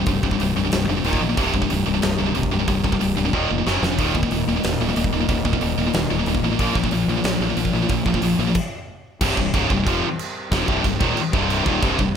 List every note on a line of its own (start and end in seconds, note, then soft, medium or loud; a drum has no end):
0.00 1.35 D#3 medium
0.00 1.02 G3 medium
0.00 1.03 C4 medium
0.00 1.02 G4 medium
0.00 1.03 C5 medium
0.06 0.18 C1 medium
0.06 0.22 C2 medium
0.06 0.22 G2 medium
0.06 kick loud
0.06 open hi-hat medium
0.23 0.35 C1 medium
0.23 0.31 C2 medium
0.23 0.30 G2 medium
0.23 kick medium
0.31 0.39 C2 medium
0.31 0.39 G2 medium
0.31 kick medium
0.40 0.51 C1 medium
0.40 0.55 C2 medium
0.40 0.55 G2 medium
0.40 open hi-hat medium
0.56 0.68 C1 medium
0.56 0.63 C2 medium
0.56 0.63 G2 medium
0.64 0.71 C2 medium
0.64 0.71 G2 medium
0.72 0.84 C1 medium
0.72 0.87 C2 medium
0.72 0.87 G2 medium
0.72 snare loud
0.72 open hi-hat medium
0.88 1.00 F1 medium
0.88 0.96 C2 medium
0.88 0.95 G2 medium
0.97 1.04 C2 medium
0.97 1.05 G2 medium
1.04 1.16 D#1 medium
1.04 1.19 D#2 medium
1.04 1.19 A#2 medium
1.04 1.38 A#2 medium
1.04 1.21 D#3 loud
1.04 1.38 A#3 medium
1.04 3.64 D#4 medium
1.04 1.38 D#5 medium
1.04 open hi-hat medium
1.13 kick medium
1.20 1.33 A#1 loud
1.20 1.28 D#2 medium
1.20 1.28 A#2 medium
1.29 1.36 D#2 medium
1.29 1.37 A#2 medium
1.37 1.49 C1 medium
1.37 1.53 C2 medium
1.37 1.52 G2 medium
1.37 3.31 C3 medium
1.37 1.53 C3 loud
1.37 3.64 D#3 medium
1.37 3.31 G3 medium
1.37 3.31 G4 medium
1.37 kick loud
1.37 open hi-hat medium
1.53 1.65 C1 medium
1.53 1.61 C2 medium
1.53 1.60 G2 medium
1.53 kick medium
1.62 1.68 C2 medium
1.62 1.69 G2 medium
1.62 kick medium
1.70 1.82 C1 medium
1.70 1.85 C2 medium
1.70 1.85 G2 medium
1.70 open hi-hat medium
1.86 1.99 C1 medium
1.86 1.94 C2 medium
1.86 1.93 G2 medium
1.95 2.01 C2 medium
1.95 2.01 G2 medium
2.02 2.15 C1 medium
2.02 2.17 C2 medium
2.02 2.18 G2 medium
2.02 snare loud
2.02 open hi-hat medium
2.19 2.31 C1 medium
2.19 2.27 C2 medium
2.19 2.26 G2 medium
2.27 2.34 C2 medium
2.27 2.34 G2 medium
2.35 2.48 C1 medium
2.35 2.50 C2 medium
2.35 2.50 G2 medium
2.35 open hi-hat medium
2.43 kick medium
2.52 2.64 C1 medium
2.52 2.59 C2 medium
2.52 2.59 G2 medium
2.60 2.67 C2 medium
2.60 2.67 G2 medium
2.68 2.80 C1 medium
2.68 2.83 C2 medium
2.68 2.83 G2 medium
2.68 kick loud
2.68 open hi-hat medium
2.84 2.96 C1 medium
2.84 2.92 C2 medium
2.84 2.91 G2 medium
2.84 kick medium
2.92 3.00 C2 medium
2.92 3.00 G2 medium
2.92 kick medium
3.01 3.13 C1 medium
3.01 3.16 C2 medium
3.01 3.16 G2 medium
3.01 open hi-hat medium
3.17 3.29 D1 medium
3.17 3.24 C2 medium
3.17 3.24 G2 medium
3.25 3.33 C2 medium
3.25 3.33 G2 medium
3.33 3.45 D#1 medium
3.33 3.49 D#2 medium
3.33 3.49 A#2 medium
3.33 3.66 A#2 medium
3.33 3.49 D#3 medium
3.33 3.66 A#3 medium
3.33 3.66 D#5 medium
3.33 kick medium
3.50 3.62 F1 medium
3.50 3.57 D#2 medium
3.50 3.57 A#2 medium
3.58 3.66 D#2 medium
3.58 3.66 A#2 medium
3.66 3.78 F#1 medium
3.66 3.82 F#2 medium
3.66 3.82 C#3 medium
3.66 3.99 C#3 medium
3.66 3.99 F#3 medium
3.66 3.82 F#3 loud
3.66 3.99 C#4 medium
3.66 3.99 F#4 medium
3.66 3.99 F#5 medium
3.66 snare medium
3.82 3.99 F1 medium
3.82 3.90 F#2 medium
3.82 3.90 C#3 medium
3.82 snare medium
3.91 3.99 F#2 medium
3.91 3.99 C#3 medium
3.99 4.10 D#1 medium
3.99 4.14 D#2 medium
3.99 4.14 A#2 medium
3.99 4.15 D#3 medium
3.99 6.57 G3 medium
3.99 8.52 A#3 medium
3.99 6.57 D#4 medium
3.99 8.52 A#4 medium
3.99 6.57 D#5 medium
3.99 kick loud
3.99 open hi-hat medium
4.15 4.26 D#1 medium
4.15 4.23 D#2 medium
4.15 4.22 A#2 medium
4.15 kick medium
4.23 4.30 D#2 medium
4.23 4.31 A#2 medium
4.23 kick medium
4.31 4.43 D#1 medium
4.31 4.46 D#2 medium
4.31 4.46 A#2 medium
4.31 open hi-hat medium
4.48 4.60 D#1 medium
4.48 4.56 D#2 medium
4.48 4.55 A#2 medium
4.56 4.63 D#2 medium
4.56 4.64 A#2 medium
4.64 4.76 D#1 medium
4.64 4.79 D#2 medium
4.64 4.79 A#2 medium
4.64 snare loud
4.64 open hi-hat medium
4.80 4.92 D#1 medium
4.80 4.88 D#2 medium
4.80 4.88 A#2 medium
4.89 4.95 D#2 medium
4.89 4.96 A#2 medium
4.96 5.08 D#1 medium
4.96 5.11 D#2 medium
4.96 5.12 A#2 medium
4.96 open hi-hat medium
5.04 kick medium
5.13 5.25 D#1 medium
5.13 5.20 D#2 medium
5.13 5.20 A#2 medium
5.21 5.28 D#2 medium
5.21 5.29 A#2 medium
5.29 5.41 D#1 loud
5.29 5.44 D#2 medium
5.29 5.44 A#2 medium
5.29 kick loud
5.29 open hi-hat medium
5.45 5.57 D#1 medium
5.45 5.53 D#2 medium
5.45 5.52 A#2 medium
5.45 kick medium
5.53 5.61 D#2 medium
5.53 5.61 A#2 medium
5.53 kick medium
5.61 5.73 D#1 medium
5.61 5.77 D#2 medium
5.61 5.77 A#2 medium
5.61 open hi-hat medium
5.78 5.90 D#1 medium
5.78 5.86 D#2 medium
5.78 5.86 A#2 medium
5.87 5.93 D#2 medium
5.87 5.94 A#2 medium
5.94 6.06 D#1 medium
5.94 6.09 D#2 medium
5.94 6.09 A#2 medium
5.94 snare loud
5.94 open hi-hat medium
6.10 6.22 D#1 medium
6.10 6.18 D#2 medium
6.10 6.18 A#2 medium
6.19 6.26 D#2 medium
6.19 6.26 A#2 medium
6.26 6.39 D#1 medium
6.26 6.42 D#2 medium
6.26 6.42 A#2 medium
6.26 open hi-hat medium
6.35 kick medium
6.43 6.54 A1 medium
6.43 6.50 D#2 medium
6.43 6.50 A#2 medium
6.51 6.59 D#2 medium
6.51 6.58 A#2 medium
6.59 6.71 A#1 medium
6.59 6.75 A#2 medium
6.59 6.75 F3 loud
6.59 8.54 F3 medium
6.59 6.75 A#3 loud
6.59 8.54 D4 medium
6.59 8.54 D5 medium
6.59 kick loud
6.59 open hi-hat medium
6.75 6.87 A#1 medium
6.75 6.83 A#2 medium
6.75 6.82 F3 medium
6.75 kick medium
6.84 6.91 A#2 medium
6.84 6.92 F3 medium
6.84 kick medium
6.91 7.04 A#1 medium
6.91 7.07 A#2 medium
6.91 7.07 F3 medium
6.91 open hi-hat medium
7.08 7.20 A#1 medium
7.08 7.16 A#2 medium
7.08 7.16 F3 medium
7.17 7.23 A#2 medium
7.17 7.24 F3 medium
7.24 7.36 A#1 medium
7.24 7.40 A#2 medium
7.24 7.40 F3 medium
7.24 snare loud
7.24 open hi-hat medium
7.40 7.52 A#1 medium
7.40 7.48 A#2 medium
7.40 7.48 F3 medium
7.49 7.56 A#2 medium
7.49 7.56 F3 medium
7.57 7.69 A#1 medium
7.57 7.72 A#2 medium
7.57 7.72 F3 medium
7.57 open hi-hat medium
7.65 kick medium
7.73 7.85 A#1 medium
7.73 7.81 A#2 medium
7.73 7.81 F3 medium
7.82 7.88 A#2 medium
7.82 7.89 F3 medium
7.89 8.02 A#1 medium
7.89 8.05 A#2 medium
7.89 8.05 F3 medium
7.89 kick loud
7.89 open hi-hat medium
8.06 8.18 A#1 medium
8.06 8.14 A#2 medium
8.06 8.13 F3 medium
8.06 kick medium
8.14 8.22 A#2 medium
8.14 8.22 F3 medium
8.14 kick medium
8.22 8.34 A#1 medium
8.22 8.38 A#2 medium
8.22 8.38 F3 medium
8.22 open hi-hat medium
8.39 8.51 A#1 medium
8.39 8.47 A#2 medium
8.39 8.46 F3 medium
8.47 8.56 A#2 medium
8.47 8.56 F3 medium
8.55 kick loud
8.55 crash loud
9.21 9.36 C1 loud
9.21 9.37 C2 medium
9.21 9.37 G2 loud
9.21 9.37 C3 loud
9.21 12.16 D#3 medium
9.21 12.16 G3 medium
9.21 12.16 C4 medium
9.21 12.16 G4 medium
9.21 12.16 C5 medium
9.21 kick loud
9.21 crash loud
9.21 china medium
9.37 9.53 C1 medium
9.37 9.51 C2 medium
9.37 9.51 G2 medium
9.37 kick loud
9.54 9.69 C#1 loud
9.54 9.70 C#2 loud
9.54 9.70 G#2 medium
9.54 9.70 C#3 loud
9.54 kick loud
9.54 china medium
9.70 9.85 C1 medium
9.70 9.83 C2 medium
9.70 9.84 G2 medium
9.70 kick medium
9.86 10.02 F1 loud
9.86 10.02 F2 loud
9.86 10.02 C3 medium
9.86 10.03 F3 loud
9.86 kick loud
9.86 china medium
10.19 china medium
10.52 10.67 F1 loud
10.52 10.67 F2 medium
10.52 10.67 C3 loud
10.52 10.68 F3 loud
10.52 kick loud
10.52 snare loud
10.52 china medium
10.68 10.83 C1 loud
10.68 10.83 C2 medium
10.68 10.83 G2 loud
10.68 10.84 C3 loud
10.68 kick loud
10.84 11.00 C1 medium
10.84 10.97 C2 medium
10.84 10.98 G2 medium
10.84 kick loud
10.84 china medium
11.00 11.16 D#1 loud
11.00 11.16 D#2 medium
11.00 11.16 A#2 loud
11.00 11.16 D#3 medium
11.00 kick loud
11.17 muted fingered electric bass stroke soft
11.17 muted distorted electric guitar stroke medium
11.17 china medium
11.33 11.64 C1 medium
11.33 11.65 C2 loud
11.33 11.65 G2 loud
11.33 11.66 C3 loud
11.33 kick loud
11.50 china medium
11.65 11.81 D#1 loud
11.65 11.82 D#2 medium
11.65 11.82 A#2 medium
11.65 11.82 D#3 loud
11.65 kick loud
11.82 11.98 C1 loud
11.82 11.97 C2 medium
11.82 11.98 G2 loud
11.82 11.98 C3 loud
11.82 kick loud
11.82 china medium
11.99 12.14 C1 medium
11.99 12.12 C2 medium
11.99 12.12 G2 medium
11.99 kick loud